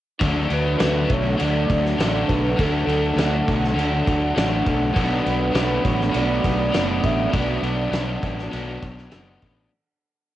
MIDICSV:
0, 0, Header, 1, 7, 480
1, 0, Start_track
1, 0, Key_signature, 2, "major"
1, 0, Tempo, 595238
1, 156, Time_signature, 4, 2, 24, 8
1, 8347, End_track
2, 0, Start_track
2, 0, Title_t, "Analog synth pad"
2, 0, Program_c, 0, 89
2, 152, Note_on_c, 0, 81, 90
2, 158, Note_on_c, 0, 69, 78
2, 164, Note_on_c, 0, 78, 75
2, 165, Note_on_c, 0, 62, 79
2, 3957, Note_off_c, 0, 81, 0
2, 3997, Note_on_c, 0, 83, 89
2, 5892, Note_off_c, 0, 83, 0
2, 5897, Note_on_c, 0, 81, 86
2, 7799, Note_off_c, 0, 69, 0
2, 7803, Note_off_c, 0, 62, 0
2, 7803, Note_off_c, 0, 78, 0
2, 7806, Note_off_c, 0, 81, 0
2, 8347, End_track
3, 0, Start_track
3, 0, Title_t, "Soft synth lead"
3, 0, Program_c, 1, 80
3, 422, Note_on_c, 1, 71, 116
3, 903, Note_on_c, 1, 73, 105
3, 916, Note_off_c, 1, 71, 0
3, 1138, Note_on_c, 1, 74, 118
3, 1150, Note_off_c, 1, 73, 0
3, 1839, Note_on_c, 1, 71, 95
3, 1851, Note_off_c, 1, 74, 0
3, 2077, Note_off_c, 1, 71, 0
3, 2085, Note_on_c, 1, 69, 102
3, 3006, Note_off_c, 1, 69, 0
3, 4236, Note_on_c, 1, 71, 95
3, 4702, Note_on_c, 1, 73, 92
3, 4714, Note_off_c, 1, 71, 0
3, 4940, Note_off_c, 1, 73, 0
3, 4945, Note_on_c, 1, 74, 109
3, 5677, Note_on_c, 1, 76, 100
3, 5689, Note_off_c, 1, 74, 0
3, 5910, Note_on_c, 1, 74, 106
3, 5922, Note_off_c, 1, 76, 0
3, 6870, Note_off_c, 1, 74, 0
3, 8347, End_track
4, 0, Start_track
4, 0, Title_t, "Clean electric guitar"
4, 0, Program_c, 2, 27
4, 167, Note_on_c, 2, 66, 87
4, 3997, Note_off_c, 2, 66, 0
4, 3997, Note_on_c, 2, 57, 79
4, 4011, Note_on_c, 2, 66, 86
4, 7833, Note_off_c, 2, 57, 0
4, 7841, Note_off_c, 2, 66, 0
4, 8347, End_track
5, 0, Start_track
5, 0, Title_t, "Overdriven electric guitar"
5, 0, Program_c, 3, 29
5, 156, Note_on_c, 3, 50, 87
5, 165, Note_on_c, 3, 54, 100
5, 170, Note_on_c, 3, 57, 96
5, 179, Note_on_c, 3, 62, 99
5, 386, Note_off_c, 3, 62, 0
5, 389, Note_on_c, 3, 62, 69
5, 396, Note_off_c, 3, 57, 0
5, 399, Note_on_c, 3, 57, 62
5, 407, Note_off_c, 3, 54, 0
5, 410, Note_on_c, 3, 54, 58
5, 625, Note_off_c, 3, 50, 0
5, 628, Note_on_c, 3, 50, 71
5, 635, Note_off_c, 3, 54, 0
5, 638, Note_on_c, 3, 54, 78
5, 641, Note_off_c, 3, 57, 0
5, 644, Note_on_c, 3, 57, 84
5, 648, Note_off_c, 3, 62, 0
5, 652, Note_on_c, 3, 62, 79
5, 1096, Note_off_c, 3, 50, 0
5, 1106, Note_on_c, 3, 50, 94
5, 1113, Note_off_c, 3, 54, 0
5, 1116, Note_on_c, 3, 54, 100
5, 1119, Note_off_c, 3, 57, 0
5, 1122, Note_off_c, 3, 62, 0
5, 1122, Note_on_c, 3, 57, 88
5, 1125, Note_on_c, 3, 62, 98
5, 1578, Note_off_c, 3, 50, 0
5, 1587, Note_on_c, 3, 50, 77
5, 1597, Note_off_c, 3, 54, 0
5, 1600, Note_on_c, 3, 54, 77
5, 1604, Note_off_c, 3, 57, 0
5, 1608, Note_on_c, 3, 57, 82
5, 1611, Note_off_c, 3, 62, 0
5, 1614, Note_on_c, 3, 62, 89
5, 2058, Note_off_c, 3, 50, 0
5, 2067, Note_on_c, 3, 50, 95
5, 2068, Note_off_c, 3, 54, 0
5, 2072, Note_on_c, 3, 54, 93
5, 2079, Note_off_c, 3, 57, 0
5, 2082, Note_on_c, 3, 57, 102
5, 2084, Note_off_c, 3, 62, 0
5, 2087, Note_on_c, 3, 62, 102
5, 2305, Note_off_c, 3, 62, 0
5, 2308, Note_on_c, 3, 62, 70
5, 2319, Note_off_c, 3, 57, 0
5, 2322, Note_on_c, 3, 57, 69
5, 2327, Note_off_c, 3, 54, 0
5, 2330, Note_on_c, 3, 54, 55
5, 2542, Note_off_c, 3, 50, 0
5, 2551, Note_on_c, 3, 50, 75
5, 2555, Note_off_c, 3, 54, 0
5, 2559, Note_on_c, 3, 54, 72
5, 2563, Note_off_c, 3, 57, 0
5, 2566, Note_on_c, 3, 57, 76
5, 2571, Note_off_c, 3, 62, 0
5, 2574, Note_on_c, 3, 62, 80
5, 3008, Note_off_c, 3, 50, 0
5, 3017, Note_on_c, 3, 50, 88
5, 3024, Note_off_c, 3, 54, 0
5, 3027, Note_on_c, 3, 54, 92
5, 3032, Note_off_c, 3, 57, 0
5, 3035, Note_on_c, 3, 57, 94
5, 3036, Note_off_c, 3, 62, 0
5, 3040, Note_on_c, 3, 62, 93
5, 3496, Note_off_c, 3, 50, 0
5, 3506, Note_on_c, 3, 50, 77
5, 3512, Note_off_c, 3, 54, 0
5, 3515, Note_off_c, 3, 57, 0
5, 3515, Note_on_c, 3, 54, 90
5, 3518, Note_on_c, 3, 57, 84
5, 3523, Note_off_c, 3, 62, 0
5, 3526, Note_on_c, 3, 62, 86
5, 3974, Note_off_c, 3, 50, 0
5, 3977, Note_on_c, 3, 47, 87
5, 3981, Note_off_c, 3, 54, 0
5, 3984, Note_on_c, 3, 54, 98
5, 3993, Note_off_c, 3, 57, 0
5, 3995, Note_off_c, 3, 62, 0
5, 3996, Note_on_c, 3, 59, 96
5, 3998, Note_on_c, 3, 62, 93
5, 4208, Note_off_c, 3, 62, 0
5, 4211, Note_on_c, 3, 62, 76
5, 4223, Note_off_c, 3, 59, 0
5, 4226, Note_on_c, 3, 59, 63
5, 4231, Note_off_c, 3, 54, 0
5, 4235, Note_on_c, 3, 54, 58
5, 4450, Note_off_c, 3, 47, 0
5, 4453, Note_on_c, 3, 47, 70
5, 4460, Note_off_c, 3, 54, 0
5, 4463, Note_on_c, 3, 54, 76
5, 4467, Note_off_c, 3, 59, 0
5, 4470, Note_off_c, 3, 62, 0
5, 4471, Note_on_c, 3, 59, 81
5, 4473, Note_on_c, 3, 62, 79
5, 4914, Note_off_c, 3, 47, 0
5, 4917, Note_on_c, 3, 47, 86
5, 4924, Note_off_c, 3, 54, 0
5, 4927, Note_on_c, 3, 54, 96
5, 4930, Note_off_c, 3, 59, 0
5, 4933, Note_on_c, 3, 59, 100
5, 4938, Note_off_c, 3, 62, 0
5, 4941, Note_on_c, 3, 62, 95
5, 5404, Note_off_c, 3, 47, 0
5, 5407, Note_on_c, 3, 47, 83
5, 5413, Note_off_c, 3, 54, 0
5, 5416, Note_on_c, 3, 54, 82
5, 5418, Note_off_c, 3, 59, 0
5, 5422, Note_on_c, 3, 59, 89
5, 5429, Note_off_c, 3, 62, 0
5, 5432, Note_on_c, 3, 62, 97
5, 5889, Note_off_c, 3, 47, 0
5, 5897, Note_off_c, 3, 54, 0
5, 5898, Note_on_c, 3, 47, 89
5, 5904, Note_off_c, 3, 59, 0
5, 5907, Note_on_c, 3, 54, 89
5, 5912, Note_off_c, 3, 62, 0
5, 5914, Note_on_c, 3, 59, 92
5, 5922, Note_on_c, 3, 62, 98
5, 6123, Note_off_c, 3, 62, 0
5, 6133, Note_on_c, 3, 62, 73
5, 6142, Note_off_c, 3, 59, 0
5, 6152, Note_off_c, 3, 54, 0
5, 6152, Note_on_c, 3, 59, 71
5, 6161, Note_on_c, 3, 54, 57
5, 6362, Note_off_c, 3, 47, 0
5, 6371, Note_on_c, 3, 47, 70
5, 6372, Note_off_c, 3, 54, 0
5, 6380, Note_off_c, 3, 59, 0
5, 6381, Note_on_c, 3, 54, 78
5, 6385, Note_off_c, 3, 62, 0
5, 6390, Note_on_c, 3, 59, 76
5, 6395, Note_on_c, 3, 62, 89
5, 6849, Note_off_c, 3, 47, 0
5, 6858, Note_off_c, 3, 54, 0
5, 6859, Note_on_c, 3, 47, 84
5, 6865, Note_off_c, 3, 59, 0
5, 6868, Note_on_c, 3, 54, 98
5, 6874, Note_off_c, 3, 62, 0
5, 6875, Note_on_c, 3, 59, 93
5, 6884, Note_on_c, 3, 62, 88
5, 7329, Note_off_c, 3, 47, 0
5, 7339, Note_on_c, 3, 47, 79
5, 7340, Note_off_c, 3, 54, 0
5, 7345, Note_off_c, 3, 59, 0
5, 7349, Note_on_c, 3, 54, 82
5, 7353, Note_off_c, 3, 62, 0
5, 7354, Note_on_c, 3, 59, 85
5, 7363, Note_on_c, 3, 62, 87
5, 7811, Note_off_c, 3, 47, 0
5, 7816, Note_off_c, 3, 54, 0
5, 7819, Note_off_c, 3, 59, 0
5, 7823, Note_off_c, 3, 62, 0
5, 8347, End_track
6, 0, Start_track
6, 0, Title_t, "Fingered electric bass"
6, 0, Program_c, 4, 33
6, 169, Note_on_c, 4, 38, 86
6, 363, Note_off_c, 4, 38, 0
6, 404, Note_on_c, 4, 38, 87
6, 600, Note_off_c, 4, 38, 0
6, 653, Note_on_c, 4, 38, 89
6, 845, Note_off_c, 4, 38, 0
6, 884, Note_on_c, 4, 35, 85
6, 1080, Note_off_c, 4, 35, 0
6, 1138, Note_on_c, 4, 38, 93
6, 1328, Note_off_c, 4, 38, 0
6, 1375, Note_on_c, 4, 38, 90
6, 1567, Note_off_c, 4, 38, 0
6, 1604, Note_on_c, 4, 33, 88
6, 1800, Note_off_c, 4, 33, 0
6, 1850, Note_on_c, 4, 35, 84
6, 2043, Note_off_c, 4, 35, 0
6, 2089, Note_on_c, 4, 38, 89
6, 2283, Note_off_c, 4, 38, 0
6, 2315, Note_on_c, 4, 38, 92
6, 2514, Note_off_c, 4, 38, 0
6, 2549, Note_on_c, 4, 38, 84
6, 2750, Note_off_c, 4, 38, 0
6, 2810, Note_on_c, 4, 35, 83
6, 3003, Note_off_c, 4, 35, 0
6, 3031, Note_on_c, 4, 38, 97
6, 3231, Note_off_c, 4, 38, 0
6, 3285, Note_on_c, 4, 38, 90
6, 3479, Note_off_c, 4, 38, 0
6, 3525, Note_on_c, 4, 33, 94
6, 3719, Note_off_c, 4, 33, 0
6, 3770, Note_on_c, 4, 35, 89
6, 3998, Note_off_c, 4, 35, 0
6, 4001, Note_on_c, 4, 35, 89
6, 4196, Note_off_c, 4, 35, 0
6, 4244, Note_on_c, 4, 35, 83
6, 4438, Note_off_c, 4, 35, 0
6, 4470, Note_on_c, 4, 35, 89
6, 4669, Note_off_c, 4, 35, 0
6, 4714, Note_on_c, 4, 33, 84
6, 4911, Note_off_c, 4, 33, 0
6, 4958, Note_on_c, 4, 35, 97
6, 5153, Note_off_c, 4, 35, 0
6, 5199, Note_on_c, 4, 35, 91
6, 5394, Note_off_c, 4, 35, 0
6, 5440, Note_on_c, 4, 30, 88
6, 5635, Note_off_c, 4, 30, 0
6, 5676, Note_on_c, 4, 33, 84
6, 5872, Note_off_c, 4, 33, 0
6, 5916, Note_on_c, 4, 35, 88
6, 6112, Note_off_c, 4, 35, 0
6, 6148, Note_on_c, 4, 35, 84
6, 6347, Note_off_c, 4, 35, 0
6, 6382, Note_on_c, 4, 35, 87
6, 6584, Note_off_c, 4, 35, 0
6, 6635, Note_on_c, 4, 33, 89
6, 6832, Note_off_c, 4, 33, 0
6, 6882, Note_on_c, 4, 35, 95
6, 7076, Note_off_c, 4, 35, 0
6, 7120, Note_on_c, 4, 35, 89
6, 7315, Note_off_c, 4, 35, 0
6, 7353, Note_on_c, 4, 30, 83
6, 7552, Note_off_c, 4, 30, 0
6, 7599, Note_on_c, 4, 33, 91
6, 7795, Note_off_c, 4, 33, 0
6, 8347, End_track
7, 0, Start_track
7, 0, Title_t, "Drums"
7, 166, Note_on_c, 9, 36, 110
7, 168, Note_on_c, 9, 49, 81
7, 247, Note_off_c, 9, 36, 0
7, 249, Note_off_c, 9, 49, 0
7, 402, Note_on_c, 9, 49, 56
7, 482, Note_off_c, 9, 49, 0
7, 641, Note_on_c, 9, 49, 81
7, 646, Note_on_c, 9, 38, 109
7, 721, Note_off_c, 9, 49, 0
7, 726, Note_off_c, 9, 38, 0
7, 882, Note_on_c, 9, 49, 62
7, 885, Note_on_c, 9, 36, 88
7, 963, Note_off_c, 9, 49, 0
7, 966, Note_off_c, 9, 36, 0
7, 1124, Note_on_c, 9, 49, 82
7, 1205, Note_off_c, 9, 49, 0
7, 1369, Note_on_c, 9, 36, 84
7, 1372, Note_on_c, 9, 49, 66
7, 1450, Note_off_c, 9, 36, 0
7, 1452, Note_off_c, 9, 49, 0
7, 1497, Note_on_c, 9, 38, 29
7, 1577, Note_off_c, 9, 38, 0
7, 1613, Note_on_c, 9, 49, 84
7, 1618, Note_on_c, 9, 38, 113
7, 1694, Note_off_c, 9, 49, 0
7, 1699, Note_off_c, 9, 38, 0
7, 1850, Note_on_c, 9, 36, 84
7, 1853, Note_on_c, 9, 49, 56
7, 1930, Note_off_c, 9, 36, 0
7, 1934, Note_off_c, 9, 49, 0
7, 2088, Note_on_c, 9, 49, 82
7, 2090, Note_on_c, 9, 36, 107
7, 2168, Note_off_c, 9, 49, 0
7, 2170, Note_off_c, 9, 36, 0
7, 2335, Note_on_c, 9, 49, 60
7, 2416, Note_off_c, 9, 49, 0
7, 2568, Note_on_c, 9, 49, 75
7, 2572, Note_on_c, 9, 38, 102
7, 2648, Note_off_c, 9, 49, 0
7, 2653, Note_off_c, 9, 38, 0
7, 2809, Note_on_c, 9, 36, 89
7, 2814, Note_on_c, 9, 49, 60
7, 2889, Note_off_c, 9, 36, 0
7, 2895, Note_off_c, 9, 49, 0
7, 2936, Note_on_c, 9, 38, 35
7, 3017, Note_off_c, 9, 38, 0
7, 3055, Note_on_c, 9, 49, 74
7, 3136, Note_off_c, 9, 49, 0
7, 3287, Note_on_c, 9, 36, 87
7, 3295, Note_on_c, 9, 49, 56
7, 3368, Note_off_c, 9, 36, 0
7, 3376, Note_off_c, 9, 49, 0
7, 3529, Note_on_c, 9, 49, 76
7, 3534, Note_on_c, 9, 38, 117
7, 3610, Note_off_c, 9, 49, 0
7, 3615, Note_off_c, 9, 38, 0
7, 3764, Note_on_c, 9, 36, 80
7, 3766, Note_on_c, 9, 49, 52
7, 3845, Note_off_c, 9, 36, 0
7, 3846, Note_off_c, 9, 49, 0
7, 4002, Note_on_c, 9, 36, 106
7, 4007, Note_on_c, 9, 49, 78
7, 4083, Note_off_c, 9, 36, 0
7, 4087, Note_off_c, 9, 49, 0
7, 4246, Note_on_c, 9, 49, 57
7, 4326, Note_off_c, 9, 49, 0
7, 4475, Note_on_c, 9, 49, 77
7, 4480, Note_on_c, 9, 38, 106
7, 4556, Note_off_c, 9, 49, 0
7, 4560, Note_off_c, 9, 38, 0
7, 4718, Note_on_c, 9, 36, 90
7, 4723, Note_on_c, 9, 49, 62
7, 4799, Note_off_c, 9, 36, 0
7, 4803, Note_off_c, 9, 49, 0
7, 4847, Note_on_c, 9, 38, 33
7, 4927, Note_off_c, 9, 38, 0
7, 4954, Note_on_c, 9, 49, 80
7, 5034, Note_off_c, 9, 49, 0
7, 5197, Note_on_c, 9, 36, 85
7, 5204, Note_on_c, 9, 49, 64
7, 5278, Note_off_c, 9, 36, 0
7, 5285, Note_off_c, 9, 49, 0
7, 5436, Note_on_c, 9, 49, 80
7, 5441, Note_on_c, 9, 38, 106
7, 5516, Note_off_c, 9, 49, 0
7, 5521, Note_off_c, 9, 38, 0
7, 5675, Note_on_c, 9, 36, 83
7, 5678, Note_on_c, 9, 49, 57
7, 5756, Note_off_c, 9, 36, 0
7, 5759, Note_off_c, 9, 49, 0
7, 5915, Note_on_c, 9, 36, 112
7, 5915, Note_on_c, 9, 49, 89
7, 5995, Note_off_c, 9, 36, 0
7, 5995, Note_off_c, 9, 49, 0
7, 6156, Note_on_c, 9, 49, 57
7, 6237, Note_off_c, 9, 49, 0
7, 6395, Note_on_c, 9, 49, 80
7, 6400, Note_on_c, 9, 38, 102
7, 6476, Note_off_c, 9, 49, 0
7, 6481, Note_off_c, 9, 38, 0
7, 6636, Note_on_c, 9, 36, 83
7, 6636, Note_on_c, 9, 49, 62
7, 6716, Note_off_c, 9, 49, 0
7, 6717, Note_off_c, 9, 36, 0
7, 6761, Note_on_c, 9, 38, 35
7, 6841, Note_off_c, 9, 38, 0
7, 6879, Note_on_c, 9, 49, 75
7, 6959, Note_off_c, 9, 49, 0
7, 7117, Note_on_c, 9, 36, 83
7, 7117, Note_on_c, 9, 49, 57
7, 7198, Note_off_c, 9, 36, 0
7, 7198, Note_off_c, 9, 49, 0
7, 7239, Note_on_c, 9, 38, 28
7, 7319, Note_off_c, 9, 38, 0
7, 7349, Note_on_c, 9, 49, 75
7, 7354, Note_on_c, 9, 38, 109
7, 7430, Note_off_c, 9, 49, 0
7, 7434, Note_off_c, 9, 38, 0
7, 7594, Note_on_c, 9, 49, 57
7, 7599, Note_on_c, 9, 36, 80
7, 7675, Note_off_c, 9, 49, 0
7, 7680, Note_off_c, 9, 36, 0
7, 8347, End_track
0, 0, End_of_file